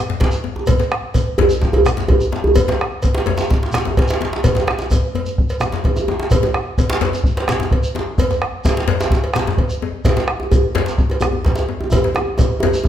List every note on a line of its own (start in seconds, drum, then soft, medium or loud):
0.10 djembe slap medium
0.10 djembe bass medium
0.20 bombo low loud
0.20 cowbell medium
0.20 djembe slap loud
0.31 djembe slap soft
0.31 shekere soft
0.44 djembe tone medium
0.56 djembe tone medium
0.67 bombo low loud
0.67 cowbell medium
0.67 djembe bass medium
0.67 shekere medium
0.79 bombo rim soft
0.79 djembe slap medium
0.79 djembe tone medium
0.79 shekere soft
0.92 bombo rim loud
1.14 bombo low medium
1.14 cowbell medium
1.14 djembe tone medium
1.14 shekere medium
1.27 djembe slap soft
1.38 cowbell medium
1.38 djembe slap medium
1.38 djembe bass loud
1.38 djembe bass medium
1.49 djembe tone medium
1.49 shekere medium
1.61 bombo low medium
1.61 djembe slap medium
1.61 shekere soft
1.73 cowbell medium
1.73 djembe bass loud
1.85 bombo rim loud
1.85 djembe tone medium
1.85 shekere medium
1.97 djembe slap medium
1.97 djembe bass medium
2.08 bombo low medium
2.08 cowbell medium
2.08 djembe bass medium
2.20 djembe slap soft
2.20 shekere soft
2.32 djembe slap medium
2.32 djembe tone medium
2.44 djembe bass loud
2.55 bombo low loud
2.55 cowbell medium
2.55 djembe bass medium
2.55 shekere medium
2.67 bombo rim soft
2.67 djembe slap medium
2.67 djembe tone medium
2.67 shekere soft
2.81 bombo rim loud
3.02 bombo low medium
3.02 cowbell medium
3.02 djembe tone medium
3.02 shekere medium
3.15 djembe slap loud
3.16 djembe slap soft
3.26 cowbell medium
3.26 djembe slap medium
3.26 djembe tone medium
3.26 djembe bass medium
3.37 djembe slap medium
3.37 djembe tone medium
3.37 shekere medium
3.49 bombo low loud
3.49 djembe slap medium
3.49 shekere soft
3.62 djembe slap soft
3.62 djembe slap medium
3.72 bombo rim loud
3.72 djembe slap loud
3.72 djembe tone medium
3.72 shekere medium
3.85 djembe slap medium
3.85 djembe tone medium
3.85 djembe bass medium
3.97 bombo low loud
3.97 cowbell medium
3.97 djembe slap medium
4.08 djembe slap soft
4.08 shekere soft
4.10 djembe slap medium
4.21 djembe slap medium
4.21 djembe tone medium
4.33 djembe slap loud
4.44 bombo low medium
4.44 cowbell medium
4.44 djembe tone medium
4.44 djembe bass medium
4.44 shekere medium
4.55 bombo rim soft
4.55 djembe slap medium
4.55 djembe tone medium
4.55 shekere soft
4.57 djembe slap medium
4.68 bombo rim loud
4.68 djembe slap medium
4.68 djembe slap soft
4.79 djembe slap medium
4.79 shekere soft
4.90 bombo low loud
4.90 cowbell medium
4.90 djembe slap soft
4.90 djembe tone medium
4.90 shekere medium
5.15 cowbell medium
5.15 djembe bass medium
5.26 djembe slap soft
5.26 djembe tone medium
5.26 shekere soft
5.38 bombo low loud
5.38 djembe slap soft
5.49 cowbell medium
5.49 djembe slap soft
5.49 shekere soft
5.60 bombo rim loud
5.60 djembe tone loud
5.60 shekere medium
5.62 djembe tone medium
5.72 bombo rim soft
5.72 djembe slap medium
5.72 djembe bass medium
5.72 shekere soft
5.84 bombo rim soft
5.84 bombo low loud
5.84 cowbell medium
5.84 djembe tone medium
5.96 bombo rim soft
5.96 djembe tone medium
5.96 shekere soft
6.08 djembe tone loud
6.08 djembe tone medium
6.20 djembe slap medium
6.30 bombo low loud
6.30 cowbell medium
6.30 djembe tone medium
6.30 djembe bass medium
6.30 shekere medium
6.43 bombo rim soft
6.43 djembe slap medium
6.43 djembe tone medium
6.43 shekere soft
6.54 bombo rim loud
6.78 bombo low medium
6.78 cowbell soft
6.78 djembe tone medium
6.78 shekere medium
6.90 djembe slap loud
6.90 djembe slap soft
7.01 cowbell medium
7.01 djembe slap medium
7.01 djembe bass medium
7.13 djembe tone medium
7.13 shekere medium
7.24 bombo low loud
7.24 shekere soft
7.37 cowbell medium
7.37 djembe slap medium
7.48 bombo rim loud
7.48 djembe slap loud
7.48 djembe tone medium
7.48 shekere medium
7.60 djembe slap medium
7.60 djembe bass medium
7.71 bombo low loud
7.71 cowbell medium
7.83 djembe slap soft
7.83 shekere soft
7.95 djembe slap medium
7.95 djembe tone medium
8.18 bombo low loud
8.18 cowbell medium
8.18 djembe bass medium
8.18 shekere medium
8.30 bombo rim soft
8.30 djembe slap medium
8.30 djembe tone medium
8.30 shekere soft
8.42 bombo rim loud
8.64 bombo low loud
8.64 cowbell medium
8.64 djembe slap loud
8.64 djembe tone medium
8.64 shekere medium
8.77 djembe slap soft
8.77 djembe slap medium
8.88 cowbell medium
8.88 djembe slap medium
8.88 djembe bass medium
9.00 djembe slap loud
9.00 djembe tone medium
9.00 shekere soft
9.11 bombo low loud
9.11 djembe slap medium
9.11 shekere soft
9.24 cowbell medium
9.24 djembe slap soft
9.34 bombo rim loud
9.34 djembe slap loud
9.34 djembe tone medium
9.34 shekere medium
9.47 djembe slap medium
9.47 djembe bass medium
9.58 bombo low loud
9.58 cowbell soft
9.69 djembe slap soft
9.69 shekere soft
9.82 djembe tone medium
10.05 bombo low loud
10.05 cowbell medium
10.05 djembe slap medium
10.05 djembe bass medium
10.05 shekere medium
10.16 bombo rim soft
10.16 djembe slap medium
10.16 djembe tone medium
10.16 shekere soft
10.28 bombo rim loud
10.40 djembe tone medium
10.51 bombo low loud
10.51 cowbell soft
10.51 djembe tone medium
10.51 djembe bass medium
10.51 shekere medium
10.64 djembe slap soft
10.75 cowbell soft
10.75 djembe slap medium
10.75 djembe bass medium
10.86 djembe slap medium
10.86 djembe tone medium
10.86 shekere soft
10.98 bombo low loud
10.98 shekere soft
11.10 cowbell medium
11.10 djembe slap soft
11.10 djembe tone medium
11.21 bombo rim loud
11.21 djembe tone medium
11.21 djembe bass medium
11.21 shekere medium
11.32 djembe bass medium
11.45 bombo low loud
11.45 cowbell medium
11.45 djembe slap medium
11.56 djembe slap medium
11.56 djembe slap soft
11.56 shekere soft
11.69 djembe tone medium
11.81 djembe tone medium
11.91 bombo low medium
11.91 cowbell medium
11.91 djembe slap soft
11.91 djembe tone loud
11.91 djembe bass medium
11.91 shekere medium
12.04 djembe slap medium
12.04 djembe tone medium
12.14 bombo rim loud
12.14 djembe tone loud
12.14 shekere soft
12.28 djembe slap soft
12.38 bombo low loud
12.38 cowbell medium
12.38 djembe tone loud
12.38 djembe tone medium
12.38 shekere medium
12.60 cowbell medium
12.60 djembe slap medium
12.60 djembe tone loud
12.60 djembe bass medium
12.74 djembe tone medium
12.74 shekere medium
12.84 bombo rim soft
12.84 bombo low loud
12.84 djembe tone loud
12.84 shekere soft